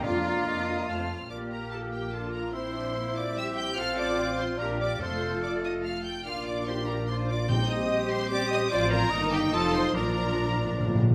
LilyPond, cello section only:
\new Staff \with { instrumentName = "Cello section" } { \time 3/4 \key bes \major \tempo 4 = 145 f'2~ f'8 r8 | g'2 f'4 | e'2 g'4 | a'4 f'4 g'4 |
a'2~ a'8 r8 | f'4 g'4 f'4 | ees'4 g'4 g'4 | f'4 ees'4 f'4 |
d'2~ d'8 r8 | }